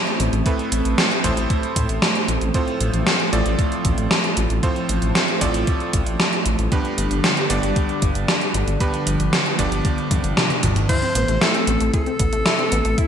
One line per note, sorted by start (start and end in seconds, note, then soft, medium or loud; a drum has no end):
0.00 0.43 A2 medium
0.00 6.68 A3 medium
0.00 0.43 C4 medium
0.00 4.59 C4 medium
0.00 0.43 E4 medium
0.00 0.43 A4 medium
0.00 0.43 C5 loud
0.07 closed hi-hat soft
0.20 0.29 A1 medium
0.20 closed hi-hat medium
0.33 0.42 A1 medium
0.33 closed hi-hat soft
0.46 1.21 A2 medium
0.46 1.21 C4 medium
0.46 1.21 E4 medium
0.46 1.21 A4 medium
0.46 1.21 B4 medium
0.46 kick loud
0.46 closed hi-hat soft
0.59 closed hi-hat soft
0.72 0.81 A1 medium
0.72 closed hi-hat medium
0.85 0.95 A1 medium
0.85 closed hi-hat soft
0.98 snare loud
0.98 closed hi-hat medium
1.11 closed hi-hat soft
1.24 1.34 A1 loud
1.24 2.51 A2 medium
1.24 2.51 C4 medium
1.24 2.51 E4 medium
1.24 2.51 A4 medium
1.24 2.51 C5 loud
1.24 kick medium
1.24 closed hi-hat medium
1.37 1.47 A1 medium
1.37 closed hi-hat medium
1.50 kick loud
1.50 closed hi-hat soft
1.63 closed hi-hat soft
1.76 1.86 A2 medium
1.76 kick loud
1.76 closed hi-hat medium
1.89 1.99 A1 medium
1.89 closed hi-hat soft
2.02 snare loud
2.02 closed hi-hat soft
2.15 closed hi-hat soft
2.28 2.38 A1 medium
2.28 closed hi-hat medium
2.41 2.51 A1 medium
2.41 closed hi-hat soft
2.54 3.30 A2 medium
2.54 6.68 F3 medium
2.54 3.30 C4 medium
2.54 3.30 F4 medium
2.54 3.30 A4 medium
2.54 3.30 C5 medium
2.54 kick loud
2.54 closed hi-hat soft
2.68 closed hi-hat soft
2.80 2.90 A1 medium
2.80 closed hi-hat medium
2.94 3.03 A1 medium
2.94 closed hi-hat soft
3.07 snare loud
3.07 closed hi-hat soft
3.20 closed hi-hat soft
3.33 3.42 A1 loud
3.33 4.60 A2 medium
3.33 4.60 C4 medium
3.33 4.60 F4 medium
3.33 4.60 A4 medium
3.33 4.60 D5 loud
3.33 closed hi-hat medium
3.46 3.55 A1 medium
3.46 closed hi-hat soft
3.59 kick loud
3.59 closed hi-hat soft
3.72 closed hi-hat soft
3.85 3.94 A1 medium
3.85 kick loud
3.85 closed hi-hat medium
3.98 4.08 A1 medium
3.98 closed hi-hat soft
4.11 snare loud
4.11 closed hi-hat soft
4.24 closed hi-hat soft
4.37 4.47 A1 medium
4.37 closed hi-hat medium
4.50 4.60 A1 medium
4.50 closed hi-hat soft
4.63 5.38 A2 medium
4.63 5.38 C4 medium
4.63 5.38 F4 medium
4.63 5.38 A4 medium
4.63 5.38 C5 medium
4.63 kick loud
4.63 closed hi-hat soft
4.76 closed hi-hat soft
4.89 4.99 A1 medium
4.89 closed hi-hat medium
5.02 5.12 A1 medium
5.02 closed hi-hat soft
5.15 snare loud
5.15 closed hi-hat soft
5.28 closed hi-hat soft
5.41 5.51 A1 loud
5.41 6.69 A2 medium
5.41 6.69 C4 medium
5.41 6.69 F4 medium
5.41 6.69 A4 medium
5.41 6.69 D5 loud
5.41 kick medium
5.41 closed hi-hat medium
5.54 5.64 A1 medium
5.54 closed hi-hat medium
5.67 kick loud
5.67 closed hi-hat soft
5.80 closed hi-hat soft
5.93 6.03 A1 medium
5.93 kick loud
5.93 closed hi-hat medium
6.06 6.16 A1 medium
6.06 closed hi-hat soft
6.20 snare loud
6.20 closed hi-hat soft
6.33 closed hi-hat soft
6.46 6.55 A1 medium
6.46 closed hi-hat medium
6.59 6.68 A1 medium
6.59 closed hi-hat soft
6.72 7.47 G2 medium
6.72 10.85 D3 medium
6.72 8.78 G3 medium
6.72 7.47 B3 medium
6.72 7.47 D4 medium
6.72 7.47 G4 medium
6.72 7.47 B4 medium
6.72 kick loud
6.72 closed hi-hat soft
6.85 closed hi-hat soft
6.98 7.08 G1 medium
6.98 closed hi-hat medium
7.11 7.21 G1 medium
7.11 closed hi-hat soft
7.24 snare loud
7.24 closed hi-hat medium
7.37 closed hi-hat soft
7.50 7.60 G1 medium
7.50 8.77 G2 medium
7.50 8.77 B3 medium
7.50 8.77 D4 medium
7.50 8.78 G4 medium
7.50 8.77 D5 loud
7.50 closed hi-hat medium
7.63 7.73 G1 medium
7.63 closed hi-hat soft
7.76 kick loud
7.76 closed hi-hat soft
7.89 closed hi-hat soft
8.02 8.12 G1 loud
8.02 kick loud
8.02 closed hi-hat medium
8.15 8.25 G1 medium
8.15 closed hi-hat soft
8.28 snare loud
8.28 closed hi-hat soft
8.41 closed hi-hat soft
8.54 8.64 G1 medium
8.54 closed hi-hat medium
8.67 8.77 G1 medium
8.67 closed hi-hat soft
8.80 9.56 G2 medium
8.80 10.87 F3 medium
8.80 9.56 B3 medium
8.80 9.56 D4 medium
8.80 9.56 G4 medium
8.80 9.56 B4 medium
8.80 kick loud
8.80 closed hi-hat medium
8.94 closed hi-hat soft
9.06 9.16 G1 medium
9.06 closed hi-hat loud
9.19 9.29 G1 medium
9.19 closed hi-hat medium
9.33 snare loud
9.33 closed hi-hat soft
9.46 closed hi-hat soft
9.59 9.68 G1 loud
9.59 10.86 G2 medium
9.59 10.86 B3 medium
9.59 10.86 D4 medium
9.59 10.86 G4 medium
9.59 10.86 D5 loud
9.59 kick medium
9.59 closed hi-hat medium
9.72 9.81 G1 medium
9.72 closed hi-hat medium
9.85 kick loud
9.85 closed hi-hat soft
9.98 closed hi-hat soft
10.11 10.21 G2 medium
10.11 kick loud
10.11 closed hi-hat medium
10.11 high tom medium
10.24 10.33 G1 medium
10.24 closed hi-hat medium
10.37 snare loud
10.37 closed hi-hat soft
10.37 mid tom medium
10.50 closed hi-hat soft
10.50 mid tom medium
10.63 10.73 G1 medium
10.63 kick medium
10.63 closed hi-hat medium
10.63 mid tom medium
10.76 10.86 G1 medium
10.76 closed hi-hat soft
10.76 mid tom medium
10.89 13.07 C3 medium
10.89 13.07 A3 medium
10.89 10.97 E4 medium
10.89 11.43 C5 loud
10.89 kick loud
10.89 closed hi-hat medium
10.89 crash medium
11.02 11.07 C4 medium
11.02 closed hi-hat soft
11.15 11.25 A1 medium
11.15 11.23 B3 medium
11.15 closed hi-hat medium
11.28 11.38 A1 medium
11.28 11.36 A3 medium
11.28 closed hi-hat medium
11.41 11.49 E4 loud
11.41 11.93 A4 loud
11.41 snare loud
11.41 closed hi-hat medium
11.54 11.66 C4 medium
11.54 closed hi-hat soft
11.67 11.77 A1 loud
11.67 11.75 B3 medium
11.67 closed hi-hat medium
11.80 11.90 A1 medium
11.80 11.92 A3 medium
11.80 closed hi-hat medium
11.94 12.01 E4 medium
11.94 13.00 A4 loud
11.94 kick loud
11.94 closed hi-hat soft
12.06 12.11 C4 medium
12.06 closed hi-hat soft
12.19 12.29 A1 medium
12.19 12.27 B3 medium
12.19 kick loud
12.19 closed hi-hat medium
12.33 12.42 A1 medium
12.33 12.40 A3 medium
12.33 closed hi-hat medium
12.46 12.53 E4 loud
12.46 snare loud
12.46 closed hi-hat medium
12.59 12.70 C4 medium
12.59 closed hi-hat soft
12.72 12.81 A1 medium
12.72 12.79 B3 medium
12.72 closed hi-hat loud
12.85 12.95 A1 medium
12.85 12.96 A3 medium
12.85 closed hi-hat medium
12.98 13.06 E4 medium
12.98 13.07 E4 loud
12.98 kick loud
12.98 closed hi-hat medium